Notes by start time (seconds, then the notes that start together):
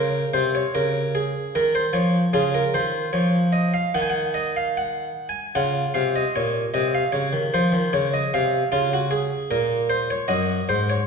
Already playing: C#3 F4 A#4
0.34 C3 C5
0.55 C#5
0.75 C#3 A#4
1.15 G#4
1.55 D#3 A#4
1.75 C5
1.93 F3 C#5
2.33 C#3 F4 G#4
2.55 A#4
2.74 D#3 C5
3.13 F3 C#5
3.53 D#5
3.74 F5
3.94 D#3 D#4 F#5
4.02 G#5
4.10 F#5
4.34 D#5
4.56 F5
4.77 F#5
5.29 G#5
5.55 C#3 F4 F#5
5.94 C3 F5
6.16 D#5
6.36 A#2 C#5
6.74 C3 D#5
6.95 F5
7.12 C#3 C#5
7.33 D#3
7.54 F3 C5
7.72 D#3
7.93 C#3 C#5
8.14 D#5
8.34 C3 F5
8.72 C#3 F4
8.93 F#4
9.11 G#4
9.51 A#2 A#4
9.90 C5
10.10 C#5
10.28 F#2 F#4 D#5
10.69 G#2 C5
10.90 C#5